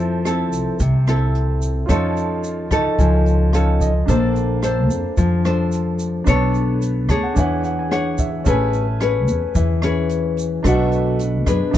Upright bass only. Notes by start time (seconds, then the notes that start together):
Already playing: F2
0.52 C2
0.80 C2
1.89 F2
2.71 C#2
2.99 C#2
4.08 A#1
4.90 F2
5.18 F2
6.27 B1
7.09 D2
7.36 E2
8.46 A1
9.28 E2
9.55 E2
10.65 B1
11.47 F#2
11.74 E2